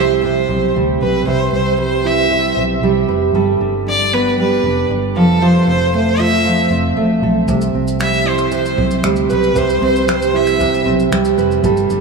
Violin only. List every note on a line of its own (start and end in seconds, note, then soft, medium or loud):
0.00 0.24 C5 medium
0.24 0.72 C5 medium
1.03 1.26 B4 medium
1.28 1.52 C5 medium
1.53 1.77 C5 medium
1.80 2.08 C5 medium
2.07 2.57 E5 medium
3.89 4.15 D5 medium
4.14 4.39 B4 medium
4.40 4.87 B4 medium
5.16 5.44 A4 medium
5.42 5.68 C5 medium
5.69 5.93 C5 medium
5.96 6.22 C5 medium
6.21 6.72 E5 medium
8.01 8.30 E5 medium
8.28 8.53 C5 medium
8.54 9.02 C5 medium
9.31 9.59 B4 medium
9.58 9.83 C5 medium
9.85 10.08 C5 medium
10.11 10.37 C5 medium
10.36 10.87 E5 medium